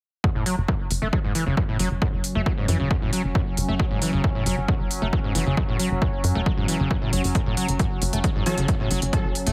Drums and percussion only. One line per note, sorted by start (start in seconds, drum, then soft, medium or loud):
0.24 kick loud
0.46 open hi-hat loud
0.68 kick loud
0.91 open hi-hat loud
1.13 kick loud
1.35 open hi-hat loud
1.57 kick loud
1.79 open hi-hat loud
2.02 kick loud
2.24 open hi-hat loud
2.46 kick loud
2.68 open hi-hat loud
2.91 kick loud
3.13 open hi-hat loud
3.35 kick loud
3.57 open hi-hat loud
3.80 kick loud
4.02 open hi-hat loud
4.24 kick loud
4.46 open hi-hat loud
4.68 kick loud
4.91 open hi-hat loud
5.13 kick loud
5.35 open hi-hat loud
5.57 kick loud
5.80 open hi-hat loud
6.02 kick loud
6.24 open hi-hat loud
6.46 kick loud
6.68 open hi-hat loud
6.91 kick loud
7.13 open hi-hat loud
7.24 open hi-hat medium
7.35 kick loud
7.35 closed hi-hat medium
7.57 open hi-hat loud
7.68 closed hi-hat medium
7.79 kick loud
7.79 closed hi-hat medium
8.02 open hi-hat loud
8.13 closed hi-hat medium
8.24 kick loud
8.24 closed hi-hat medium
8.46 open hi-hat loud
8.58 closed hi-hat medium
8.68 kick loud
8.68 closed hi-hat medium
8.91 open hi-hat loud
9.02 closed hi-hat medium
9.13 kick loud
9.13 closed hi-hat medium
9.35 open hi-hat loud
9.47 closed hi-hat medium